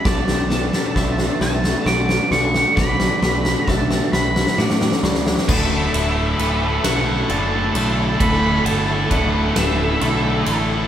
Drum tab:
CC |------------------------|------------------------|x-----------------------|------------------------|
RD |------------------------|------------------------|----x---x---x---x---x---|x---x---x---x---x---x---|
SD |o-o-o-o-o-o-o-o-o-o-o-o-|o-o-o-o-o-o-o-oooooooooo|------------o-----------|------------o-----------|
BD |o-------o---------------|o-------o---------------|o-----------------------|o-------o---------------|